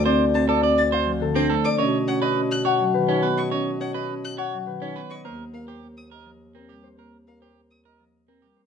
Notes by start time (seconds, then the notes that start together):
Already playing: D2 A4 C5 F5
0.05 C4 C5 D5
0.35 C4 C5 A5
0.49 A4 D5
0.63 C4 D5
0.78 A6
0.92 C5 F5
1.07 F3
1.20 D3 A4
1.35 C4 D4 C5 D6
1.50 A3 A4
1.64 D5 D6
1.78 B2 C#4 C#5 D#5
2.08 C#4 C#5 F#5
2.22 B4 D#5
2.37 C#4
2.51 F#6
2.65 C#5 F#5
2.80 F#3
2.94 D#3 B4
3.09 C#4 D#4 C#5
3.23 B3 B4
3.37 D#5 C#6
3.51 C#4 C#5 D#5
3.81 C#5 F#5
3.94 B4 D#5
4.11 C#4
4.25 F#6
4.38 C#5 F#5
4.54 F#3
4.67 D#3 B4
4.81 C#4 D#4 C#5
4.96 B3 B4
5.10 D#5 C#6
5.25 D#2 A#3 A#4 C5
5.53 A#3 A#4 F5
5.68 G4 C5
5.83 A#3
5.97 D#6
6.11 A#4 D#5
6.26 F3
6.55 C4 A#4
6.69 G3 G4
6.84 C5
6.98 A#3 A#4 C5
7.27 A#3 A#4 F5
7.41 G4 C5
7.71 D#6
7.85 A#4 D#5
8.00 F3
8.28 C4 A#4
8.42 G3 G4
8.56 C5